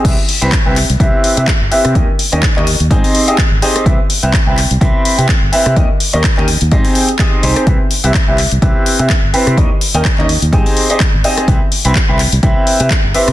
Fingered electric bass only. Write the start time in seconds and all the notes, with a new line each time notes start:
0.05 C2
0.42 C2
0.66 C2
0.90 C2
1.37 C3
1.61 G1
1.72 muted fingered electric bass stroke
1.85 C3
1.95 D#2
2.33 D#2
2.56 D#2
2.80 D#2
2.91 G#2
3.52 G#1
3.86 C2
4.23 C2
4.47 C2
4.71 C2
4.81 C2
5.18 C3
5.42 G1
5.53 muted fingered electric bass stroke
5.66 C3
5.76 D#2
6.14 D#2
6.38 D#2
6.62 D#2
6.72 G#2
7.43 C2
7.67 C2
8.04 C2
8.28 C2
8.52 C2
8.62 C2
8.99 C3
9.23 G1
9.34 muted fingered electric bass stroke
9.47 C3
9.57 D#2
9.94 D#2
10.18 D#2
10.42 D#2
11.14 G#1
11.48 C2
11.85 C2
12.09 C2
12.33 C2
12.43 C2
12.80 C3
13.04 G1
13.15 muted fingered electric bass stroke
13.28 C3